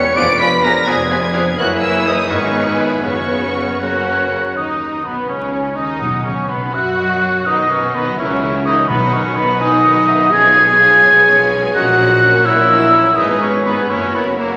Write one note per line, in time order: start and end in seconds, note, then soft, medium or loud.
0.00 1.54 B3 medium
0.00 0.17 G4 medium
0.00 0.15 C#5 loud
0.00 0.19 C#6 loud
0.00 0.14 C#7 loud
0.16 0.79 F1 medium
0.16 0.71 F1 medium
0.16 0.79 F2 loud
0.16 0.27 F3 medium
0.16 0.24 B3 medium
0.16 1.58 D4 medium
0.16 0.25 F4 medium
0.16 0.26 G#4 medium
0.16 0.27 B4 medium
0.16 0.41 D5 loud
0.16 0.27 D5 medium
0.16 0.39 D6 loud
0.16 0.39 D7 loud
0.40 0.51 F3 medium
0.40 0.48 B3 medium
0.40 0.48 F4 medium
0.40 0.50 G#4 medium
0.40 0.66 B4 loud
0.40 0.51 B4 medium
0.40 0.50 D5 medium
0.40 0.66 B5 loud
0.40 0.63 B6 loud
0.63 0.75 F3 medium
0.63 0.71 B3 medium
0.63 0.71 F4 medium
0.63 0.73 G#4 medium
0.63 0.90 A#4 loud
0.63 0.74 B4 medium
0.63 0.73 D5 medium
0.63 0.87 A#5 loud
0.63 0.86 A#6 loud
0.86 1.50 F1 medium
0.86 1.50 F2 loud
0.86 0.99 F3 medium
0.86 0.94 B3 medium
0.86 0.95 F4 medium
0.86 0.96 G#4 medium
0.86 1.59 G#4 medium
0.86 0.97 B4 medium
0.86 0.96 D5 medium
0.86 1.57 G#5 medium
0.86 1.58 G#6 loud
1.09 1.22 F3 medium
1.09 1.18 B3 medium
1.09 1.18 F4 medium
1.09 1.20 G#4 medium
1.09 1.20 B4 medium
1.09 1.20 D5 medium
1.33 1.46 F3 medium
1.33 1.42 B3 medium
1.33 1.42 F4 medium
1.33 1.42 G#4 medium
1.33 1.44 B4 medium
1.33 1.43 D5 medium
1.58 2.32 F#1 medium
1.58 2.27 F#1 medium
1.58 2.27 F#2 medium
1.58 1.70 E3 medium
1.58 2.29 A#3 medium
1.58 2.27 A#3 medium
1.58 2.31 E4 medium
1.58 2.27 E4 medium
1.58 1.70 F#4 medium
1.58 2.27 G#4 medium
1.58 1.68 A#4 medium
1.58 2.27 C#5 medium
1.58 1.65 F#5 medium
1.58 1.67 F#6 loud
1.81 1.93 E3 medium
1.81 2.08 E4 medium
1.81 1.92 A#4 medium
1.81 2.07 E5 medium
1.81 2.05 E6 loud
2.05 2.17 E3 medium
2.05 2.32 D#4 medium
2.05 2.16 A#4 medium
2.05 2.34 D#5 medium
2.05 2.30 D#6 medium
2.30 3.05 G#1 medium
2.30 3.05 G#2 medium
2.30 2.42 D#3 medium
2.30 3.82 B3 medium
2.30 3.04 B3 medium
2.30 2.80 C#4 medium
2.30 2.67 D#4 medium
2.30 3.05 D#4 medium
2.30 3.03 G#4 medium
2.30 3.03 B4 medium
2.30 2.41 B4 medium
2.30 2.84 C#5 medium
2.30 2.80 C#6 medium
2.53 2.67 D#3 medium
2.53 2.65 B4 medium
2.67 3.05 E4 medium
2.79 2.91 D#3 medium
2.79 2.92 B3 medium
2.79 2.90 B4 medium
2.79 3.06 B4 medium
2.79 3.05 B5 medium
3.04 4.33 F#1 medium
3.04 4.33 F#2 medium
3.04 3.16 C#3 medium
3.04 3.81 B3 medium
3.04 3.82 C#4 medium
3.04 3.80 C#4 medium
3.04 3.81 F#4 medium
3.04 3.82 B4 medium
3.04 3.16 B4 medium
3.04 3.80 C#5 medium
3.04 3.52 C#5 medium
3.04 3.80 C#6 medium
3.30 3.42 C#3 soft
3.30 3.42 B4 soft
3.56 3.68 C#3 medium
3.56 3.67 B4 soft
3.81 3.94 C#3 soft
3.81 4.32 A#3 medium
3.81 4.36 C#4 medium
3.81 4.58 F#4 medium
3.81 4.53 F#4 medium
3.81 4.35 F#4 medium
3.81 3.93 A#4 medium
3.81 4.36 A#4 medium
3.81 4.35 C#5 medium
3.81 4.52 F#5 medium
3.81 4.53 F#6 medium
4.06 4.18 C#3 soft
4.06 4.33 B4 medium
4.31 4.43 C#3 soft
4.31 4.56 C#5 medium
4.56 5.01 D#2 soft
4.56 5.06 D#2 soft
4.56 5.01 D#3 medium
4.56 5.02 D#4 soft
4.56 5.04 D#4 soft
4.56 5.02 D#4 medium
4.56 5.05 D#4 soft
4.56 5.05 D#5 soft
4.56 5.07 D#6 medium
5.04 5.28 B1 soft
5.04 5.29 B1 soft
5.04 5.29 B2 soft
5.04 5.28 B3 soft
5.04 5.29 B3 soft
5.04 5.29 B4 soft
5.04 5.29 B5 medium
5.28 5.76 C#2 soft
5.28 5.76 C#3 soft
5.28 5.78 C#4 soft
5.28 5.77 C#4 soft
5.28 5.77 C#4 medium
5.28 5.75 C#5 soft
5.28 6.01 G#5 medium
5.28 5.76 C#6 medium
5.76 6.23 D#2 soft
5.76 6.24 D#2 medium
5.76 6.24 D#3 soft
5.76 6.23 D#4 medium
5.76 6.23 D#4 soft
5.76 6.25 D#4 medium
5.76 6.24 D#4 medium
5.76 6.24 D#5 soft
5.76 6.24 D#6 medium
6.00 6.71 B2 medium
6.00 6.73 F#5 soft
6.23 6.34 C#2 soft
6.23 6.33 C#2 medium
6.23 6.32 C#3 medium
6.23 6.48 C#4 soft
6.23 6.49 C#4 soft
6.23 6.37 C#4 soft
6.23 6.49 C#5 soft
6.23 6.51 C#6 medium
6.48 6.73 B1 medium
6.48 6.74 B1 soft
6.48 6.74 B2 soft
6.48 6.75 B3 medium
6.48 6.74 B3 medium
6.48 6.75 B3 soft
6.48 6.74 B4 soft
6.48 6.76 B5 medium
6.73 7.45 F#2 medium
6.73 7.46 F#2 medium
6.73 7.46 F#3 medium
6.73 7.45 F#4 medium
6.73 7.47 F#4 medium
6.73 7.45 F#4 medium
6.73 6.98 E5 medium
6.73 7.47 F#5 medium
6.73 7.47 F#6 medium
6.98 7.24 D#5 soft
7.23 7.47 C#5 soft
7.46 8.10 B1 medium
7.46 8.11 B1 medium
7.46 8.10 B2 medium
7.46 7.58 D#3 soft
7.46 7.58 D#4 soft
7.46 7.70 D#4 medium
7.46 7.58 B4 soft
7.46 8.19 D#5 medium
7.46 7.56 D#5 medium
7.46 7.72 D#6 medium
7.58 7.71 F#3 soft
7.58 7.71 B3 soft
7.58 7.70 F#4 soft
7.58 7.70 D#5 soft
7.70 7.83 D#3 soft
7.70 7.94 C#4 medium
7.70 7.97 C#4 medium
7.70 7.83 D#4 soft
7.70 7.84 D#4 soft
7.70 7.84 B4 soft
7.70 7.95 C#5 medium
7.70 7.96 C#6 medium
7.83 7.95 F#3 soft
7.83 7.95 B3 soft
7.83 7.96 F#4 soft
7.83 7.96 D#5 soft
7.94 8.06 D#3 soft
7.94 8.18 B3 medium
7.94 8.19 B3 medium
7.94 8.06 D#4 soft
7.94 8.07 D#4 soft
7.94 8.19 B4 medium
7.94 8.07 B4 soft
7.94 8.18 B5 medium
8.06 8.18 F#3 soft
8.06 8.19 B3 soft
8.06 8.19 F#4 soft
8.06 8.19 D#5 soft
8.18 8.81 C#2 medium
8.18 8.81 C#3 medium
8.18 8.29 E3 medium
8.18 8.66 C#4 medium
8.18 8.65 C#4 medium
8.18 8.30 E4 medium
8.18 8.30 E4 soft
8.18 8.30 A#4 medium
8.18 8.66 C#5 medium
8.18 8.89 E5 medium
8.18 8.67 C#6 medium
8.29 8.42 F#3 soft
8.29 8.42 C#4 soft
8.29 8.42 F#4 soft
8.29 8.42 C#5 soft
8.41 8.54 E3 medium
8.41 8.54 E4 soft
8.41 8.55 A#4 soft
8.54 8.66 F#3 medium
8.54 8.66 C#4 soft
8.54 8.67 F#4 soft
8.54 8.67 C#5 soft
8.65 8.77 E3 medium
8.65 8.89 D#4 medium
8.65 8.90 D#4 medium
8.65 8.77 E4 medium
8.65 8.78 E4 soft
8.65 8.78 A#4 medium
8.65 8.75 D#5 medium
8.65 8.89 D#6 medium
8.78 8.90 F#3 medium
8.78 8.90 C#4 medium
8.78 8.90 F#4 soft
8.78 8.90 C#5 soft
8.88 9.52 B1 medium
8.88 9.52 B2 medium
8.88 9.57 B2 medium
8.88 9.01 D#3 medium
8.88 9.01 B3 medium
8.88 9.14 B3 medium
8.88 9.01 D#4 medium
8.88 9.02 D#4 medium
8.88 9.13 B4 medium
8.88 9.59 F#5 medium
8.88 9.15 B5 medium
8.92 9.02 B4 medium
9.01 9.13 F#3 medium
9.01 9.13 B3 soft
9.01 9.14 F#4 medium
9.01 9.14 D#5 medium
9.13 9.25 D#3 medium
9.13 9.37 C#4 medium
9.13 9.39 C#4 medium
9.13 9.25 D#4 soft
9.13 9.25 B4 soft
9.13 9.37 C#5 medium
9.13 9.37 C#6 medium
9.25 9.37 F#3 medium
9.25 9.37 B3 medium
9.25 9.37 F#4 medium
9.25 9.37 D#5 medium
9.36 9.48 D#3 medium
9.36 9.63 B3 medium
9.36 9.61 B3 medium
9.36 9.48 D#4 medium
9.36 9.48 B4 medium
9.36 9.45 B4 medium
9.36 9.60 B5 medium
9.48 9.61 F#3 medium
9.48 9.61 B3 medium
9.48 9.61 F#4 medium
9.48 9.62 D#5 medium
9.60 10.25 B1 medium
9.60 10.25 B2 medium
9.60 9.72 D#3 medium
9.60 9.72 D#4 medium
9.60 10.32 D#4 medium
9.60 9.73 D#4 medium
9.60 10.34 D#4 medium
9.60 9.73 B4 medium
9.60 10.32 D#5 medium
9.60 9.83 G#5 medium
9.60 10.32 D#6 loud
9.73 9.85 F#3 medium
9.73 9.85 B3 medium
9.73 9.85 F#4 medium
9.73 9.86 D#5 medium
9.84 9.96 D#3 medium
9.84 9.96 D#4 medium
9.84 9.96 B4 medium
9.84 10.07 F#5 medium
9.97 10.09 F#3 medium
9.97 10.09 B3 medium
9.97 10.09 F#4 medium
9.97 10.10 D#5 medium
10.08 10.20 D#3 medium
10.08 10.21 D#4 medium
10.08 10.21 B4 medium
10.08 10.33 E5 medium
10.21 10.33 F#3 medium
10.21 10.33 B3 medium
10.21 10.33 F#4 medium
10.21 10.34 D#5 medium
10.32 10.96 B1 medium
10.32 10.96 B2 medium
10.32 10.44 F3 medium
10.32 10.44 C#4 medium
10.32 11.74 G#4 loud
10.32 11.47 G#4 medium
10.32 10.44 G#4 medium
10.32 10.44 C#5 medium
10.32 10.59 D#5 medium
10.32 11.72 G#5 loud
10.32 11.45 G#6 loud
10.45 10.57 G#3 medium
10.45 10.57 B3 medium
10.45 10.58 F4 medium
10.45 10.57 B4 medium
10.57 10.69 F3 medium
10.57 10.69 C#4 medium
10.57 10.69 G#4 medium
10.57 10.79 C#5 medium
10.57 10.70 C#5 medium
10.69 10.81 G#3 medium
10.69 10.81 B3 medium
10.69 10.81 F4 medium
10.69 10.81 B4 medium
10.80 10.91 F3 medium
10.80 10.92 C#4 medium
10.80 10.92 G#4 medium
10.80 10.92 C#5 medium
10.80 11.03 F5 medium
10.92 11.04 G#3 medium
10.92 11.04 B3 medium
10.92 11.04 F4 medium
10.92 11.04 B4 medium
11.03 11.66 B1 medium
11.03 11.67 B1 medium
11.03 11.67 B2 medium
11.03 11.16 F3 medium
11.03 11.16 C#4 medium
11.03 11.16 G#4 medium
11.03 11.15 C#5 medium
11.03 11.73 C#5 medium
11.15 11.28 G#3 medium
11.15 11.28 B3 medium
11.15 11.27 F4 medium
11.15 11.27 B4 medium
11.25 11.39 F3 medium
11.25 11.39 C#4 medium
11.25 11.38 G#4 medium
11.25 11.37 C#5 medium
11.38 11.51 G#3 medium
11.38 11.51 B3 medium
11.38 11.50 F4 medium
11.38 11.50 B4 medium
11.49 11.63 F3 medium
11.49 11.63 C#4 medium
11.49 11.62 G#4 medium
11.49 11.62 C#5 medium
11.62 11.75 G#3 medium
11.62 11.75 B3 medium
11.62 11.74 F4 medium
11.62 11.75 B4 medium
11.73 12.37 A#1 medium
11.73 12.38 A#1 medium
11.73 12.38 A#2 medium
11.73 11.86 F#3 medium
11.73 11.86 C#4 medium
11.73 12.45 F#4 medium
11.73 12.48 F#4 medium
11.73 11.84 A#4 medium
11.73 11.85 C#5 medium
11.73 12.20 D#5 medium
11.73 12.45 F#5 loud
11.73 12.47 F#6 loud
11.85 11.99 A#3 medium
11.85 11.98 F#4 medium
11.85 11.96 A#4 medium
11.97 12.10 F#3 medium
11.97 12.11 C#4 medium
11.97 12.10 A#4 medium
11.97 12.10 C#5 medium
12.10 12.22 A#3 medium
12.10 12.22 F#4 medium
12.10 12.21 A#4 medium
12.22 12.33 F#3 medium
12.22 12.33 C#4 medium
12.22 12.33 A#4 medium
12.22 12.34 C#5 medium
12.34 12.46 A#3 medium
12.34 12.46 F#4 medium
12.34 12.45 A#4 medium
12.45 13.00 A#1 medium
12.45 13.09 A#1 medium
12.45 13.09 A#2 medium
12.45 12.58 F#3 medium
12.45 12.58 C#4 medium
12.45 13.17 E4 loud
12.45 12.56 A#4 medium
12.45 12.58 C#5 medium
12.45 12.70 C#5 medium
12.45 13.18 E5 medium
12.45 13.17 E6 loud
12.58 12.70 A#3 medium
12.58 12.70 F#4 medium
12.58 12.68 A#4 soft
12.69 12.81 F#3 medium
12.69 12.81 C#4 medium
12.69 12.79 A#4 medium
12.69 12.81 C#5 medium
12.69 12.95 D#5 medium
12.80 12.94 A#3 medium
12.80 12.93 F#4 medium
12.80 12.92 A#4 medium
12.93 13.06 F#3 medium
12.93 13.06 C#4 medium
12.93 13.03 A#4 medium
12.93 13.05 C#5 medium
12.93 13.17 C#5 medium
13.04 13.18 A#3 medium
13.04 13.17 F#4 medium
13.04 13.17 A#4 medium
13.15 13.81 G#1 medium
13.15 13.82 G#1 medium
13.15 13.82 G#2 medium
13.15 13.29 G#3 medium
13.15 13.41 D#4 medium
13.15 13.29 D#4 medium
13.15 13.27 G#4 medium
13.15 13.27 B4 medium
13.15 13.89 B4 medium
13.15 13.42 D#5 medium
13.15 13.40 D#6 medium
13.28 13.42 B3 medium
13.28 13.38 G#4 medium
13.28 13.42 G#4 medium
13.28 13.38 B4 medium
13.39 13.54 G#3 medium
13.39 13.66 C#4 medium
13.39 13.53 C#4 medium
13.39 13.54 D#4 medium
13.39 13.50 G#4 medium
13.39 13.50 B4 soft
13.39 13.68 C#6 loud
13.43 13.51 C#5 medium
13.51 13.65 B3 medium
13.51 13.63 G#4 medium
13.51 13.66 G#4 medium
13.51 13.63 B4 medium
13.64 13.77 G#3 medium
13.64 13.90 B3 medium
13.64 13.92 B3 medium
13.64 13.77 D#4 medium
13.64 13.76 G#4 medium
13.64 13.77 B4 medium
13.64 13.75 B4 medium
13.64 13.91 B5 medium
13.78 13.90 B3 medium
13.78 13.90 G#4 medium
13.78 13.90 B4 medium
13.90 14.55 F#1 medium
13.90 14.55 F#2 medium
13.90 14.01 A#3 medium
13.90 14.14 C#4 medium
13.90 14.15 C#4 medium
13.90 14.02 E4 medium
13.90 14.02 A#4 medium
13.90 14.57 C#5 medium
13.90 14.15 C#5 medium
13.90 14.17 C#6 medium
14.01 14.14 C#4 soft
14.01 14.14 F#4 medium
14.01 14.15 F#4 medium
14.01 14.15 C#5 soft
14.13 14.26 A#3 medium
14.13 14.39 B3 medium
14.13 14.26 B3 medium
14.13 14.26 E4 medium
14.13 14.27 E4 soft
14.13 14.27 A#4 soft
14.13 14.39 B4 medium
14.13 14.41 B5 medium
14.25 14.39 C#4 soft
14.25 14.38 F#4 soft
14.25 14.39 F#4 soft
14.25 14.39 C#5 soft
14.37 14.50 A#3 medium
14.37 14.57 A#3 medium
14.37 14.51 A#3 medium
14.37 14.50 E4 medium
14.37 14.50 A#4 soft
14.37 14.57 A#4 medium
14.37 14.57 A#5 medium
14.49 14.57 C#4 soft
14.49 14.57 F#4 soft
14.49 14.57 C#5 soft